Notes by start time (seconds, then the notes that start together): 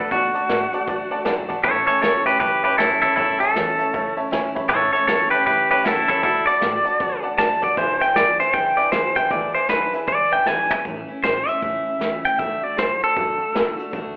Already playing: D4 F#4
0.00 A3 A4
0.10 B2 D3 A3 D4 F#4 D5 F#5 A5, kick, closed hi-hat
0.34 A3 D4 F#4 D5 F#5 A5, muted upright bass stroke, closed hi-hat
0.49 A2 D3 A3 D4 F#4 D5 F#5 A5, snare, closed hi-hat
0.73 A3 D4 F#4 D5 F#5 A5, muted upright bass stroke, closed hi-hat
0.87 F#2 D3 A3 D4 F#4 D5 F#5 A5, kick, closed hi-hat
1.11 F#2 A3 D4 F#4 D5 F#5 A5
1.25 F#2 D3 A3 D4 F#4 D5 F#5 A5, snare, closed hi-hat
1.48 A3 D4 F#4 D5 F#5 A5, muted upright bass stroke, kick, closed hi-hat
1.63 A1 A2 E3 A3 C#4 E4 A4 C#5 E5 A5, kick, closed hi-hat
1.87 A3 C#4 E4 A4 C#5 E5 G#5, muted upright bass stroke, closed hi-hat
2.01 E2 A2 E3 A3 C#4 E4 A4 C#5 E5 A5, snare, closed hi-hat
2.25 A3 C#4 E4 G4 B4 C#5 E5 A5, muted upright bass stroke, closed hi-hat
2.39 F#2 E3 E4 G4 B4 C#5 E5 A5, kick, closed hi-hat
2.63 A2 A3 C#4 E4 G4 B4 C#5 E5 A5
2.77 F#2 A2 E3 A3 C#4 E4 A4 C#5 E5 A5, snare, closed hi-hat
3.02 A3 C#4 E4 A4 C#5 E5 A5, kick, closed hi-hat
3.16 F#2 A2 E3 A3 C#4 E4 A4 C#5 E5 A5, kick, closed hi-hat
3.40 A3 C#4 E4 A4 C#5 E5 A5, muted upright bass stroke, closed hi-hat
3.54 E2 A2 E3 A3 C#4 E4 C#5 E5 A5, snare, closed hi-hat
3.78 A3 C#4 E4 C#5 E5 A5, muted upright bass stroke, closed hi-hat
3.93 C#2 E3 A3 C#4 E4 C#5 E5 A5, kick, closed hi-hat
4.17 C#2 A3 C#4 E4 C#5 E5 A5
4.30 D2 A2 E3 A3 C#4 E4 C#5 E5 G#5, snare, closed hi-hat
4.55 A3 C#4 E4 C#5 E5 A5 B5, kick, closed hi-hat
4.69 A1 A2 E3 A3 C#4 E4 A4 C#5 E5 A5, kick, closed hi-hat
4.93 C#4 E4 A4 C#5 E5 A5, muted upright bass stroke, closed hi-hat
4.97 A3
5.07 E2 A2 E3 A3 C#4 E4 A4 C#5 E5 A5, snare, closed hi-hat
5.30 E4 G4 B4 C#5 E5 A5, muted upright bass stroke, closed hi-hat
5.34 A3 C#4
5.45 F#2 E3 A3 C#4 E4 G4 B4 C#5 E5 A5, kick, closed hi-hat
5.70 A2 A3 C#4 G4 B4 C#5 E5 A5
5.84 C#2 A2 E3 A3 C#4 E4 A4 C#5 E5 F#5, snare, closed hi-hat
6.08 A3 C#4 E4 A4 C#5 E5 A5, kick, closed hi-hat
6.22 D2 D3 A3 D4 E4 F#4 A4 D5 F#5 A5, kick, closed hi-hat
6.47 A3 D4 F#4 D5 F#5 A5, muted upright bass stroke, closed hi-hat
6.60 A2 D3 A3 D4 F#4 D5 F#5 A5, snare, closed hi-hat
6.84 A3 D4 F#4 D5 F#5 A5, muted upright bass stroke, closed hi-hat
6.99 F#2 D3 A3 D4 F#4 D5 F#5 A5, kick, closed hi-hat
7.23 F#2 A3 D4 F#4 D5 F#5 A5
7.37 F#2 D3 A3 D4 F#4 D5 F#5 A5, snare, closed hi-hat
7.62 A3 D4 F#4 D5 F#5 A5, kick, closed hi-hat
7.76 E1 E2 B2 E3 G#3 D4 E4 B4 C5 E5 G#5, kick, closed hi-hat
8.00 E3 G#3 D4 E4 B4 E5 G5 G#5, muted upright bass stroke, closed hi-hat
8.15 B1 E2 B2 E3 G#3 D4 E4 B4 D5 E5 G#5, snare, closed hi-hat
8.39 E3 G#3 D4 E4 B4 C5 E5 G#5, muted upright bass stroke, closed hi-hat
8.53 C#2 E3 G#3 D4 E4 B4 E5 G5 G#5, kick, closed hi-hat
8.77 E2 E3 G#3 D4 E4 B4 D5 E5 G#5
8.91 C#2 E2 B2 E3 G#3 D4 E4 B4 C5 E5 G#5, snare, closed hi-hat
9.15 E3 G#3 D4 E4 B4 E5 G5 G#5, muted upright bass stroke, kick, closed hi-hat
9.30 D2 E2 B2 E3 G#3 D4 E4 B4 D5 E5 G#5, kick, closed hi-hat
9.54 E3 G#3 D4 E4 B4 C5 E5 G#5, muted upright bass stroke, closed hi-hat
9.69 B1 E2 B2 E3 G#3 D4 E4 B4 E5 G#5, snare, closed hi-hat
9.93 E3 G#3 D4 E4 B4 E5 G#5, muted upright bass stroke, closed hi-hat
10.07 G#1 E3 G#3 D4 B4 D5 E5 G#5, kick, closed hi-hat
10.12 E4
10.31 G#1 G#3 D4 E4 B4 E5 G5 G#5
10.36 E3
10.46 B1 E2 B2 E3 G#3 D4 E4 B4 E5 G#5, snare
10.70 E3 G#3 D4 E4 B4 E5 G#5, muted upright bass stroke, floor tom
10.84 A1 A2 E3 A3 C#4 E4, kick, closed hi-hat
11.08 A3 C#4 E4, muted upright bass stroke
11.22 A1 E3 A3 C#4 E4 C5, snare, closed hi-hat
11.47 A3 C#4 E4 E5, closed hi-hat
11.61 A1 A2 E3 A3 C#4 E4, kick, closed hi-hat
11.85 A1 A3 C#4 E4
11.99 C#2 E3 A3 C#4 E4, snare, closed hi-hat
12.23 A3 C#4 E4 G5, muted upright bass stroke, closed hi-hat
12.38 D2 D3 A3 D4 F#4 E5, kick, closed hi-hat
12.61 A3 D4 F#4 D5
12.76 F#2 D3 A3 D4 F#4 C5, snare, closed hi-hat
13.00 A3 D4 F#4 A4, muted upright bass stroke, closed hi-hat
13.14 F#2 D3 A3 D4 F#4, kick, closed hi-hat
13.37 D4 F#4, muted upright bass stroke
13.41 A3
13.52 B1 D3 A3 D4 F#4, snare, closed hi-hat
13.77 A3 D4 F#4, muted upright bass stroke, closed hi-hat
13.91 D2 D3 A3 D4 F#4, kick, closed hi-hat